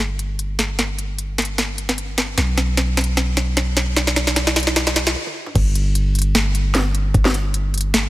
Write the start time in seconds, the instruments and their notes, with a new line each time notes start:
Already playing: 808-style bass G1
0.19 closed hi-hat
0.39 closed hi-hat
0.59 snare, closed hi-hat
0.79 snare, closed hi-hat
0.99 closed hi-hat
1.19 closed hi-hat
1.38 snare, closed hi-hat
1.42 closed hi-hat
1.45 closed hi-hat
1.58 snare, closed hi-hat
1.78 closed hi-hat
1.89 snare
1.98 closed hi-hat
2.18 snare, closed hi-hat
2.38 808-style bass B1, snare, closed hi-hat
2.58 snare, closed hi-hat
2.77 snare, closed hi-hat
2.97 snare, closed hi-hat
3.01 closed hi-hat
3.04 closed hi-hat
3.17 snare, closed hi-hat
3.37 snare, closed hi-hat
3.57 snare, closed hi-hat
3.77 snare, closed hi-hat
3.97 snare, closed hi-hat
4.07 snare
4.16 snare, closed hi-hat
4.27 snare
4.36 snare, closed hi-hat
4.47 snare
4.56 snare, closed hi-hat
4.60 closed hi-hat
4.63 closed hi-hat
4.67 snare
4.76 snare, closed hi-hat
4.87 snare
4.96 snare, closed hi-hat
5.07 snare
5.16 high tom
5.27 high tom
5.46 mid tom
5.55 808-style bass G1, kick, closed hi-hat, crash
5.75 closed hi-hat
5.95 closed hi-hat
6.15 closed hi-hat
6.19 closed hi-hat
6.22 closed hi-hat
6.35 snare, closed hi-hat
6.55 closed hi-hat
6.75 snare, closed hi-hat
6.95 closed hi-hat
7.14 kick, closed hi-hat
7.25 snare
7.34 closed hi-hat
7.54 closed hi-hat
7.74 closed hi-hat
7.78 closed hi-hat
7.81 closed hi-hat
7.94 snare, closed hi-hat